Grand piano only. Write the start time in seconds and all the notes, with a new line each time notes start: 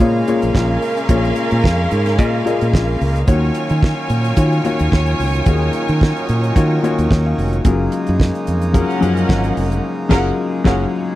0.00 A#2 A#3 F4 G#4 C#5
0.28 A#2 A#3 F4 G#4 C#5
1.09 A#2 A#3 F4 G#4 C#5
2.17 A#2 A#3 F4 G#4 D#5
2.45 A#2 A#3 F4 G#4 D#5
3.27 D#3 A#3 F4 F#4 C#5
4.36 D#3 A#3 F4 F#4 C#5
4.64 D#3 A#3 F4 F#4 C#5
5.46 D#3 A#3 F4 F#4 G#4
6.55 D#3 A#3 F4 F#4 C#5
6.83 D#3 A#3 F4 F#4 C#5
7.11 C#5
7.26 F5
7.65 F#3 C#4 F4 G#4 A#4
8.73 F#3 C#4 F4 G#4 A#4
9.01 F3 F#3 C#4 G#4 A#4
10.09 F#3 C#4 F4 G#4 A#4
10.64 F#3 C#4 F4 G#4 C#5